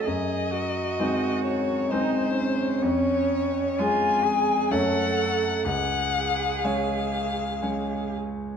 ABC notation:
X:1
M:3/4
L:1/8
Q:1/4=64
K:C#phr
V:1 name="Violin"
^d3 c ^B2 | c2 g2 f2 | f2 ^e3 z |]
V:2 name="Cello"
G F3 ^D C- | C2 ^E G A2 | G4- G z |]
V:3 name="Grand piano"
F,,2 [G,^B,^D]2 [G,B,D]2 | ^E,,2 [G,CG]2 [F,,A,Cc]2 | C,,2 [G,Cc]2 [G,Cc]2 |]